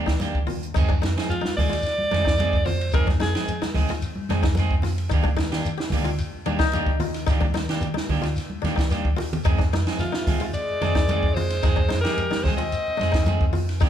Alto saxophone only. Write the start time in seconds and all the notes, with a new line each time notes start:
1.30 F4
1.57 D5
2.65 C5
2.94 A#4
3.22 G#4
10.00 F4
10.54 D5
11.34 C5
12.01 A#4
12.44 C5
12.57 D#5